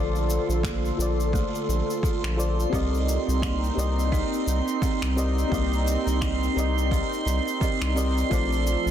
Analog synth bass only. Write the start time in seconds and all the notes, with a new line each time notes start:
Already playing: A#1
0.49 A#1
0.98 A#1
1.69 A#1
2.23 A#1
2.73 C2
3.28 C2
3.77 C2
4.47 C2
5.02 C2
5.52 C2
6.06 C2
6.56 C2
7.26 C2
7.81 C2
8.31 A#1
8.86 A#1